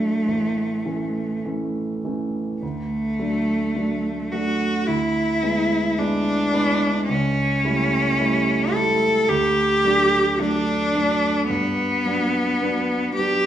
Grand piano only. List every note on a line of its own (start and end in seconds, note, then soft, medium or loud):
0.00 0.28 F#3 soft
0.00 0.28 A3 soft
0.00 0.28 D4 soft
0.28 0.84 A1 soft
0.85 1.41 E3 soft
0.85 1.41 A3 soft
0.85 1.41 C#4 soft
1.45 2.00 E3 soft
1.45 2.01 A3 soft
1.45 2.01 C#4 soft
2.05 2.58 E3 soft
2.05 2.58 A3 soft
2.05 2.59 C#4 soft
2.62 3.17 D2 soft
3.19 3.72 F#3 soft
3.19 3.72 A3 soft
3.19 3.73 D4 soft
3.75 4.28 F#3 soft
3.75 4.29 A3 soft
3.75 4.29 D4 soft
4.32 4.84 F#3 soft
4.32 4.84 A3 soft
4.32 4.85 D4 soft
4.88 5.42 D2 soft
5.43 5.95 G#3 soft
5.43 5.95 B3 soft
5.43 5.95 E4 soft
5.98 6.50 G#3 soft
5.98 6.50 B3 soft
5.98 6.50 E4 soft
6.53 7.05 G#3 soft
6.53 7.06 B3 soft
6.53 7.06 E4 soft
7.09 7.63 C#2 soft
7.64 8.15 G3 soft
7.64 8.16 A3 soft
7.64 8.16 E4 soft
8.20 8.71 G3 soft
8.20 8.71 A3 soft
8.20 8.71 E4 soft
8.73 9.25 G3 soft
8.73 9.25 A3 soft
8.73 9.25 E4 soft
9.29 9.83 D2 soft
9.84 10.35 F#3 soft
9.84 10.36 A3 soft
9.84 10.36 D4 soft
10.39 10.90 F#3 soft
10.39 10.91 A3 soft
10.39 10.91 D4 soft
10.94 11.45 F#3 soft
10.94 11.46 A3 soft
10.94 11.46 D4 soft
11.50 12.03 G2 soft
12.05 12.57 F#3 soft
12.05 12.57 B3 soft
12.05 12.57 D4 soft
12.61 13.13 F#3 soft
12.61 13.13 B3 soft
12.61 13.13 D4 soft
13.18 13.46 F#3 soft
13.18 13.46 B3 soft
13.18 13.46 D4 soft